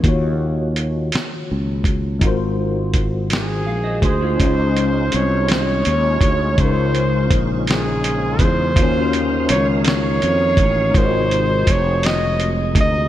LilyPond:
<<
  \new Staff \with { instrumentName = "Flugelhorn" } { \time 6/8 \key des \major \tempo 4. = 55 r2. | r4. aes'4 c''8~ | c''4 des''8 des''4. | c''4 r8 aes'4 c''8~ |
c''4 des''8 des''4. | c''4 des''8 ees''8 r8 ees''8 | }
  \new Staff \with { instrumentName = "Clean electric guitar" } { \time 6/8 \key des \major r2. | r2 f''16 <c'' ees''>16 <aes' c''>16 <f' aes'>16~ | <f' aes'>16 r2 r8. | r2. |
r2. | r2. | }
  \new Staff \with { instrumentName = "Tine electric piano" } { \time 6/8 \key des \major <ees bes f' ges' des''>2. | <aes ees' f' ges' bes' c''>2. | <aes des' ees' f' ees''>2. | <des aes ees' f' bes' c''>2. |
<ees bes des' f' ges'>2. | <aes ees' f' ges' bes' ees''>2. | }
  \new Staff \with { instrumentName = "Tonewheel organ" } { \time 6/8 \key des \major r2. | r2. | f'2.~ | f'2. |
ees'2.~ | ees'2. | }
  \new Staff \with { instrumentName = "Tonewheel organ" } { \time 6/8 \key des \major r2. | r2. | <aes des' ees'>2.~ | <aes des' ees'>2. |
<ees bes des' f''>2. | <c aes>2. | }
  \new Staff \with { instrumentName = "Fretless electric bass" } { \clef bass \time 6/8 \key des \major ees,4. r8 des,4 | aes,,2 bes,,8 d,8 | des,4 c,4 ees,8 d,8 | des,4 bes,,4. fes,8 |
ees,4 des,4 f,8 a,,8 | aes,,4 f,,4. d,8 | }
  \new DrumStaff \with { instrumentName = "Drums" } \drummode { \time 6/8 <hh bd>4 hh8 <hh sn>4 <hh bd>8 | <hh bd>4 <hh bd>8 <hh sn>4 <hh bd>8 | <hh bd>8 hh8 hh8 <hh sn>8 hh8 <hh bd>8 | <hh bd>8 hh8 <hh bd>8 <hh sn>8 hh8 <hh bd>8 |
<hh bd>8 hh8 hh8 <hh sn>8 hh8 <hh bd>8 | <hh bd>8 hh8 <hh bd>8 <hh sn>8 hh8 <hh bd>8 | }
>>